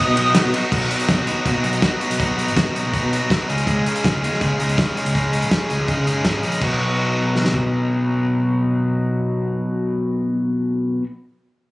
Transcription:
Already playing: B2 F#3 F#4 B4 D#5 D#6
0.00 B3 D#4 F#4
0.08 B2
0.17 B1 B2 F#3 B3 D#4 F#4, ride
0.27 B1
0.35 B2 F#3 B3 D#4 F#4, snare, clap, ride
0.45 B2
0.54 B1 B2 F#3 B3 D#4 F#4, ride
0.71 B1 B2 F#3 B3 D#4 F#4, kick, crash
0.90 B2 F#3 B3 D#4 F#4, closed hi-hat
1.00 closed hi-hat
1.08 F#2 B2 F#3 B3 D#4 F#4, kick, snare, closed hi-hat
1.19 B1
1.27 D#2 B2 F#3 B3 D#4 F#4, closed hi-hat
1.45 B2 F#3 B3 D#4 F#4, kick, closed hi-hat
1.64 B1 B2 F#3 B3 D#4 F#4, closed hi-hat
1.73 closed hi-hat
1.81 B2 F#3 B3 D#4 F#4, kick, snare, closed hi-hat
2.00 B2 F#3 B3 D#4 F#4, closed hi-hat
2.10 B1, closed hi-hat
2.18 B2 F#3 B3 D#4 F#4, kick, closed hi-hat
2.36 B2 F#3 B3 D#4 F#4, closed hi-hat
2.47 G#1, closed hi-hat
2.55 B2 F#3 B3 D#4 F#4, kick, snare, closed hi-hat
2.74 B1 B2 F#3 B3 D#4 F#4, closed hi-hat
2.85 B1
2.93 B2 F#3 B3 D#4 F#4, kick, closed hi-hat
3.03 B2
3.11 B2 F#3 B3 D#4 F#4, closed hi-hat
3.30 B2 F#3 B3 D#4 F#4, kick, snare, closed hi-hat
3.49 C#2 C#3 G#3 C#4 D#4 G#4, closed hi-hat
3.58 closed hi-hat
3.67 C#2 C#3 G#3 C#4 D#4 G#4, kick, closed hi-hat
3.85 C#3 G#3 C#4 D#4 G#4, closed hi-hat
3.96 closed hi-hat
4.03 G#1 C#3 G#3 C#4 D#4 G#4, kick, snare, closed hi-hat
4.14 C#2
4.22 D#2 C#3 G#3 C#4 D#4 G#4, closed hi-hat
4.33 snare
4.40 C#3 G#3 C#4 D#4 G#4, kick, closed hi-hat
4.58 C#2 C#3 G#3 C#4 D#4 G#4, closed hi-hat
4.69 closed hi-hat
4.77 C#3 G#3 C#4 D#4 G#4, kick, snare, closed hi-hat
4.95 C#3 G#3 C#4 D#4 G#4, closed hi-hat
5.05 C#2, closed hi-hat
5.14 C#3 G#3 C#4 D#4 G#4, kick, closed hi-hat
5.32 C#3 G#3 C#4 D#4 G#4, closed hi-hat
5.42 A#1, closed hi-hat
5.49 C#3 G#3 C#4 D#4 G#4, kick, snare, closed hi-hat
5.69 C#2 C#3 G#3 C#4 D#4 G#4, closed hi-hat
5.79 C#2
5.87 C#3 G#3 C#4 D#4 G#4, kick, closed hi-hat
5.97 C#3
6.06 F#1 C#3 G#3 C#4 D#4 G#4, closed hi-hat
6.25 G#1 C#3 G#3 C#4 D#4 G#4, kick, snare, closed hi-hat
6.43 A#1 C#3 G#3 C#4 D#4 G#4, closed hi-hat
6.52 closed hi-hat
6.61 B1 B2 F#3 B3 D#4 F#4, kick, crash
7.36 snare
7.45 snare
7.54 kick

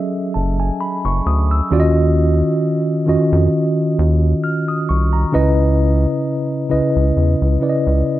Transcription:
Already playing: F#3 C#4 G#4 A4 D#5 E5
0.34 F#1 A5
0.60 G#5
0.81 B5
1.05 F#1 C#6
1.26 D2 D#6
1.51 E6
1.71 D#2 D#3 C#4 F4 F#4 D5
1.80 D#5
3.06 F2 D#3 C#4 F4 F#4 D#5
3.32 F2
3.99 D#2
4.44 F6
4.68 D#6
4.89 C2 C#6
5.13 A#5
5.32 C#2 C#3 C#4 E4 B4 D#5
6.69 C#2 C#3 C#4 E4 B4 D#5
6.96 C#2
7.17 E2
7.42 C#2
7.60 C#3 C#4 E4 B4 D5
7.69 D#5
7.87 C#2

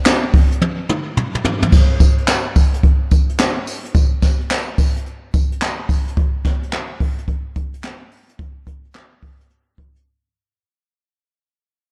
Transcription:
0.06 snare, clap, closed hi-hat, tambourine
0.34 kick, open hi-hat
0.52 closed hi-hat
0.61 high tom
0.89 mid tom
1.17 mid tom
1.35 mid tom
1.45 floor tom
1.62 floor tom
1.72 kick, crash, tambourine
2.00 kick, closed hi-hat, tambourine
2.18 closed hi-hat
2.28 snare, clap, closed hi-hat, tambourine
2.56 kick, open hi-hat, tambourine
2.74 closed hi-hat
2.83 kick, closed hi-hat
3.11 kick, closed hi-hat, tambourine
3.29 closed hi-hat
3.39 snare, clap, closed hi-hat, tambourine
3.67 open hi-hat, tambourine
3.85 closed hi-hat
3.95 kick, closed hi-hat, tambourine
4.22 kick, snare, closed hi-hat, tambourine
4.41 closed hi-hat
4.50 snare, clap, closed hi-hat, tambourine
4.78 kick, open hi-hat, tambourine
4.97 closed hi-hat
5.06 closed hi-hat
5.34 kick, closed hi-hat, tambourine
5.52 closed hi-hat
5.61 snare, clap, closed hi-hat, tambourine
5.89 kick, open hi-hat, tambourine
6.08 closed hi-hat
6.17 kick, closed hi-hat
6.45 kick, snare, closed hi-hat
6.63 closed hi-hat
6.73 snare, clap, closed hi-hat
7.00 kick, open hi-hat
7.19 closed hi-hat
7.28 kick, closed hi-hat
7.56 kick, closed hi-hat
7.74 closed hi-hat
7.84 snare, clap, closed hi-hat
8.11 open hi-hat
8.29 closed hi-hat
8.39 kick, closed hi-hat
8.67 kick, closed hi-hat
8.85 closed hi-hat
8.95 snare, clap, closed hi-hat
9.23 kick, open hi-hat
9.41 closed hi-hat
9.50 closed hi-hat
9.78 kick, closed hi-hat
9.96 closed hi-hat

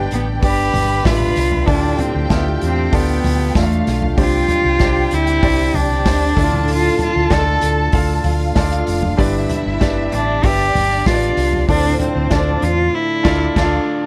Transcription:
Already playing: G2 D3 B3 D4 G4 B4 D5 G5
0.11 A1 B3, hi-hat pedal, open hi-hat
0.41 G1 D4 G4 B4 D5 B5, kick, hi-hat pedal, open hi-hat
0.74 G1, floor tom, hi-hat pedal, open hi-hat
1.03 A1 D4 F4 G4 B4 E5, kick, snare, hi-hat pedal, open hi-hat
1.20 floor tom
1.36 C2, snare, hi-hat pedal, open hi-hat
1.52 floor tom
1.65 D2 A2 D3 A3 D4 E4 F4 G4 A4 D5 G5, kick, hi-hat pedal, open hi-hat
1.73 F4
1.98 C4, floor tom, hi-hat pedal, open hi-hat
2.15 D2
2.29 D2 B3 D4 F4 A4 E5, kick, snare, hi-hat pedal, open hi-hat
2.61 E2 C4, hi-hat pedal, open hi-hat
2.92 D2 B3 D4 F4 A4 D5, kick, hi-hat pedal, open hi-hat
3.24 D2, floor tom, hi-hat pedal, open hi-hat
3.40 open hi-hat
3.55 E2 A3 D4 F4 A4 E5 F5, kick, snare, hi-hat pedal, open hi-hat
3.63 F5
3.71 hi-hat pedal
3.87 B1, snare, hi-hat pedal, open hi-hat
4.02 floor tom
4.17 C2 G2 C4 D4 F4 G4 C5 D5 G5, kick, hi-hat pedal, open hi-hat
4.48 floor tom, hi-hat pedal, open hi-hat
4.65 C2
4.79 C2 D4 G4 C5 D5, kick, snare, hi-hat pedal, open hi-hat
4.96 open hi-hat
5.11 D2 E4, hi-hat pedal, open hi-hat
5.27 hi-hat pedal
5.42 C2 D4 G4 C5 D5, kick, hi-hat pedal, open hi-hat
5.74 C2 D4, floor tom, hi-hat pedal, open hi-hat
6.05 D2 D4 G4 C5 D5, kick, snare, hi-hat pedal, open hi-hat
6.36 D2 A2 A3 D4 E4 F4 A4 D5 A5, kick, hi-hat pedal, open hi-hat
6.43 F4
6.52 floor tom
6.68 F4, hi-hat pedal, open hi-hat
6.99 floor tom, hi-hat pedal, open hi-hat
7.03 F4
7.16 D2
7.30 D2 D4 F4 A4 D5, kick, snare, hi-hat pedal, open hi-hat
7.61 D2, hi-hat pedal, open hi-hat
7.92 D2 D4 F4 A4 F5, kick, hi-hat pedal, open hi-hat
8.24 D2 F4 F5, floor tom, hi-hat pedal, open hi-hat
8.39 open hi-hat
8.55 D2 D4 F4 A4 D5, kick, snare, hi-hat pedal, open hi-hat
8.72 hi-hat pedal
8.87 F1, hi-hat pedal, open hi-hat
9.03 floor tom
9.17 G1 G2 D3 B3 D4 E4 G4 B4 D5 E5, kick, hi-hat pedal, open hi-hat
9.49 floor tom, hi-hat pedal, open hi-hat
9.66 G1
9.80 G1 D4 G4 B4 D5, kick, snare, hi-hat pedal, open hi-hat
10.12 A1 D4, hi-hat pedal, open hi-hat
10.43 G1 D4 G4 B4 D5 E5, kick, hi-hat pedal, open hi-hat
10.75 G1, floor tom, hi-hat pedal, open hi-hat
10.91 open hi-hat
11.05 A1 D4 F4 G4 B4 D5, kick, snare, hi-hat pedal, open hi-hat
11.21 hi-hat pedal
11.37 C2, hi-hat pedal, open hi-hat
11.53 floor tom
11.68 D2 A2 A3 C4 D4 F4 A4 C5 D5, kick, hi-hat pedal, open hi-hat
11.99 C4, floor tom, hi-hat pedal, open hi-hat
12.16 D2
12.30 D2 D4 F4 A4 D5, kick, snare, hi-hat pedal, open hi-hat
12.62 E2 F4, hi-hat pedal, open hi-hat
12.94 E4
13.23 D2 D4 F4 A4 D5 F5, kick, snare, crash
13.55 D2 D4 F4 A4 D5 F5, kick, snare, crash
13.62 F4

